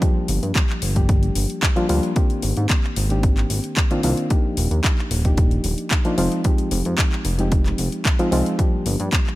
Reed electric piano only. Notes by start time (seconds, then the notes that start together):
0.01 F3 G3 A#3 D4 G4
0.95 F3 G3 A#3 D4 G4
1.76 F3 G3 A#3 D4 F4
1.89 F3 G3 A#3 D4 F4
2.15 D#3 A#3 C4 D4 G4
3.09 D#3 A#3 C4 D4 G4
3.91 D#3 A#3 C4 D4 F4
4.04 D#3 A#3 C4 D4 F4
4.30 F3 A#3 D4 D#4 G4
5.24 F3 A#3 D4 D#4 G4
6.05 F3 A#3 D4 D#4 F4
6.18 F3 G#3 C4 D#4 F4
6.44 F3 G#3 C4 D#4 G4
7.38 F3 G#3 C4 D#4 G4
8.19 F3 G#3 C4 D#4 F4
8.32 F3 G#3 C4 D#4 F4
8.58 F3 G3 A#3 D4 G4